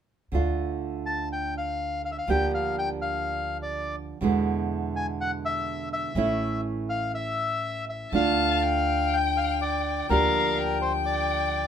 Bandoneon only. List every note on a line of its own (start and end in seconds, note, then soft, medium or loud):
1.06 1.29 A5 medium
1.33 1.54 G5 medium
1.58 2.02 F5 medium
2.05 2.11 F5 medium
2.12 2.17 E5 soft
2.18 2.30 F5 medium
2.30 2.52 G5 medium
2.55 2.76 F5 medium
2.79 2.89 G5 medium
3.02 3.57 F5 medium
3.63 3.96 D5 medium
4.96 5.06 G#5 medium
5.21 5.31 F#5 medium
5.45 5.89 E5 medium
5.93 6.61 E5 medium
6.90 7.12 F5 medium
7.15 7.85 E5 medium
7.90 8.12 E5 medium
8.15 9.16 F5 medium
9.14 9.38 G5 medium
9.37 9.60 F5 medium
9.62 10.07 D5 medium
10.10 10.79 A#4 medium
10.82 10.93 C5 medium
11.06 11.67 D5 medium